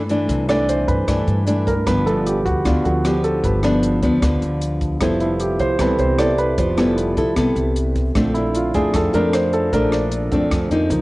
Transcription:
Already playing: upright bass G2, nylon-string guitar G2, grand piano E3 A3 D4 A4 B4 C5
0.09 nylon-string guitar E3 A3 D4, closed hi-hat
0.29 upright bass C2, nylon-string guitar C3, kick, closed hi-hat
0.48 grand piano E3 A3 D4 D5, nylon-string guitar E3 A3 D4, cross-stick, closed hi-hat
0.69 grand piano C5, closed hi-hat
0.88 upright bass G2, grand piano B4, kick, closed hi-hat
1.07 nylon-string guitar G2 E3 A3 D4, upright bass G2, grand piano E3 A3 D4, kick, cross-stick, closed hi-hat
1.27 upright bass G2, closed hi-hat
1.47 nylon-string guitar E3 A3 D4, closed hi-hat
1.67 grand piano A#4, kick, closed hi-hat
1.86 upright bass G1, nylon-string guitar G2 F3 B3 D4, grand piano B4, kick, cross-stick, closed hi-hat
2.05 grand piano F3 A3 B3 A4, closed hi-hat
2.26 grand piano G4, closed hi-hat
2.45 upright bass D2, grand piano F#4, kick, closed hi-hat
2.65 upright bass D2, nylon-string guitar D3 F3 B3 D4, grand piano F4, kick, cross-stick, closed hi-hat
2.84 upright bass D2, grand piano F3 A3 B3 F#4, closed hi-hat
3.04 nylon-string guitar F3 B3 D4, grand piano G4, cross-stick, closed hi-hat
3.24 grand piano A4, closed hi-hat
3.44 upright bass G1, nylon-string guitar G2, grand piano B4, kick, closed hi-hat
3.63 grand piano F3 A3 B3, nylon-string guitar F3 B3 D4, cross-stick, closed hi-hat
3.83 closed hi-hat
4.02 upright bass D2, nylon-string guitar F3 B3 D4, kick, closed hi-hat
4.22 upright bass D2, nylon-string guitar D3 F3 B3 D4, kick, cross-stick, closed hi-hat
4.42 upright bass D2, closed hi-hat
4.61 closed hi-hat
4.81 kick, closed hi-hat
5.00 upright bass F1, nylon-string guitar F3 B3 E4 A4, grand piano G3 A3 B3 C5, kick, cross-stick, closed hi-hat
5.20 grand piano E4, closed hi-hat
5.40 grand piano G4, closed hi-hat
5.59 upright bass C2, grand piano C5, kick, closed hi-hat
5.79 upright bass C2, nylon-string guitar C3 B3 E4 A4, grand piano E3 G3 A3 B3 B4, kick, cross-stick, closed hi-hat
5.99 upright bass C2, grand piano C5, closed hi-hat
6.19 nylon-string guitar B3 E4 A4, grand piano D5, cross-stick, closed hi-hat
6.38 grand piano B4, closed hi-hat
6.58 upright bass F1, nylon-string guitar F3, grand piano C5, kick, closed hi-hat
6.77 grand piano G3 A3 B3, nylon-string guitar B3 E4 A4, cross-stick, closed hi-hat
6.98 closed hi-hat
7.17 upright bass C2, nylon-string guitar B3 E4 A4, kick, closed hi-hat
7.36 upright bass C2, nylon-string guitar C3 B3 E4 A4, kick, cross-stick, closed hi-hat
7.56 upright bass C2, closed hi-hat
7.76 closed hi-hat
7.96 kick, closed hi-hat
8.15 upright bass A#1, nylon-string guitar A#2 F3 A3 D4, grand piano D3 A3 C4, kick, cross-stick, closed hi-hat
8.34 grand piano E4, closed hi-hat
8.55 grand piano F4, closed hi-hat
8.74 upright bass F2, nylon-string guitar F3 A3 D4, grand piano G#4, kick, closed hi-hat
8.94 nylon-string guitar F2, upright bass F2, grand piano A4, kick, cross-stick, closed hi-hat
9.13 upright bass F2, nylon-string guitar F3 A3 D4, grand piano A#4, closed hi-hat
9.33 grand piano C5, cross-stick, closed hi-hat
9.53 grand piano A4, closed hi-hat
9.73 upright bass A#1, nylon-string guitar A#2 F3 A3 D4, grand piano A#4, kick, closed hi-hat
9.92 grand piano D4, cross-stick, closed hi-hat
10.12 closed hi-hat
10.31 upright bass F2, grand piano D3 A3 C4, nylon-string guitar F3 A3 D4, kick, closed hi-hat
10.51 upright bass F2, nylon-string guitar F2, kick, cross-stick, closed hi-hat
10.71 upright bass F2, nylon-string guitar F3 A#3 D#4, closed hi-hat
10.89 upright bass C#2, grand piano F3 A#3 D#4, closed hi-hat

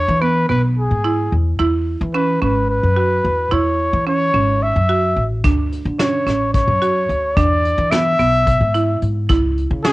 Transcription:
Already playing: trumpet C#5
0.08 upright bass E3
0.21 marimba B3, trumpet B4
0.49 upright bass B1, marimba B3, trumpet B4
0.77 trumpet G#4
0.91 upright bass G#2
1.04 marimba E4
1.32 upright bass E2
1.59 upright bass E2, marimba E4
2.01 upright bass E3
2.14 marimba C#4, trumpet B4
2.42 upright bass G#1, marimba C#4, trumpet B4
2.70 trumpet B4
2.83 upright bass F#2
2.97 marimba F#4
3.24 upright bass E2
3.51 upright bass E2, marimba E4, trumpet C#5
3.93 upright bass E3
4.07 marimba C#4, trumpet C#5
4.34 upright bass G#1, marimba C#4
4.63 trumpet E5
4.76 upright bass F#2
4.89 marimba F#4
5.16 upright bass A1
5.44 upright bass D2, marimba D4, kick, closed hi-hat
5.72 closed hi-hat
5.85 upright bass D3
5.99 marimba C#4, trumpet C#5, snare, closed hi-hat
6.26 upright bass A1, marimba C#4, snare, closed hi-hat
6.53 trumpet C#5, kick, closed hi-hat
6.68 upright bass F#2
6.82 marimba F#4, closed hi-hat
7.09 upright bass D2, closed hi-hat
7.36 upright bass E2, marimba D4, trumpet D5, kick, closed hi-hat
7.65 closed hi-hat
7.78 upright bass E3
7.91 marimba B3, trumpet E5, snare, closed hi-hat
8.19 upright bass B1, marimba B3, closed hi-hat
8.47 kick, closed hi-hat
8.61 upright bass G#2
8.74 marimba E4, closed hi-hat
9.02 upright bass G#2, closed hi-hat
9.29 upright bass C#2, marimba E4, kick, closed hi-hat
9.57 closed hi-hat
9.71 upright bass C#3
9.84 marimba C#4, trumpet G#4, snare, closed hi-hat

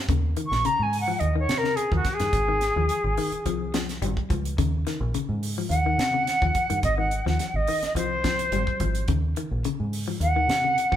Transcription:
0.08 fingered electric bass D#2, clean electric guitar C#3, kick, closed hi-hat
0.37 clean electric guitar D#3, closed hi-hat
0.46 flute C#6
0.52 fingered electric bass A#1, snare
0.65 clean electric guitar C#3, flute A#5, muted fingered electric bass stroke, closed hi-hat
0.79 fingered electric bass G#2, flute G#5
0.93 open hi-hat
1.01 flute F#5
1.08 clean electric guitar F3
1.19 fingered electric bass D#2, flute D#5, closed hi-hat
1.36 clean electric guitar D#3, flute C#5
1.49 fingered electric bass C3, snare, closed hi-hat
1.58 flute A#4
1.64 clean electric guitar C#3, snare
1.76 flute G#4, closed hi-hat
1.91 fingered electric bass D#2, clean electric guitar F3, flute F#4, kick
2.05 muted fingered electric bass stroke, kick, snare, closed hi-hat
2.14 flute G#4
2.20 fingered electric bass G2, clean electric guitar D#3, snare, closed hi-hat
2.33 fingered electric bass G#1, kick, closed hi-hat
2.48 clean electric guitar D#3
2.61 snare, closed hi-hat
2.76 fingered electric bass D#2, clean electric guitar F3
2.89 closed hi-hat
3.04 fingered electric bass G#1
3.17 clean electric guitar D#3, open hi-hat
3.32 muted fingered electric bass stroke, closed hi-hat
3.45 fingered electric bass C2, clean electric guitar F3, closed hi-hat
3.74 clean electric guitar F3, snare, closed hi-hat
3.89 snare, closed hi-hat
4.02 fingered electric bass G#1, clean electric guitar G3, closed hi-hat
4.17 kick
4.30 fingered electric bass C#2, clean electric guitar F3, kick, closed hi-hat
4.45 closed hi-hat
4.58 fingered electric bass D#2, clean electric guitar C#3, kick, closed hi-hat
4.87 clean electric guitar D#3, snare, closed hi-hat
5.01 fingered electric bass A#1
5.14 clean electric guitar C#3, muted fingered electric bass stroke, closed hi-hat
5.29 fingered electric bass G#2
5.43 open hi-hat
5.58 clean electric guitar F3
5.70 fingered electric bass D#2, flute F#5, closed hi-hat
5.86 clean electric guitar D#3
5.98 fingered electric bass C3, snare, closed hi-hat
6.14 clean electric guitar C#3
6.27 snare, closed hi-hat
6.42 fingered electric bass D#2, clean electric guitar F3, kick
6.55 kick, closed hi-hat
6.70 fingered electric bass G2, clean electric guitar D#3, closed hi-hat
6.83 fingered electric bass G#1, flute D#5, kick, closed hi-hat
6.98 clean electric guitar D#3, flute F#5
7.11 closed hi-hat
7.26 fingered electric bass D#2, clean electric guitar F3, flute F#5, snare
7.39 snare, closed hi-hat
7.54 fingered electric bass G#1, flute D#5
7.67 clean electric guitar D#3, open hi-hat
7.82 muted fingered electric bass stroke, snare, closed hi-hat
7.95 fingered electric bass C2, clean electric guitar F3, flute C5, closed hi-hat
8.24 clean electric guitar F3, kick, snare, closed hi-hat
8.39 closed hi-hat
8.52 fingered electric bass G#1, clean electric guitar G3, closed hi-hat
8.67 kick
8.80 fingered electric bass G#1, clean electric guitar F3, kick, closed hi-hat
8.95 closed hi-hat
9.08 fingered electric bass D#2, clean electric guitar C#3, kick, closed hi-hat
9.36 clean electric guitar D#3, closed hi-hat
9.51 fingered electric bass A#1
9.64 clean electric guitar C#3, closed hi-hat
9.80 fingered electric bass G#2
9.93 open hi-hat
10.08 clean electric guitar F3
10.20 fingered electric bass D#2, flute F#5, closed hi-hat
10.36 clean electric guitar D#3
10.48 fingered electric bass C3, snare, closed hi-hat
10.64 clean electric guitar C#3
10.78 closed hi-hat
10.92 fingered electric bass D#2, clean electric guitar F3, kick

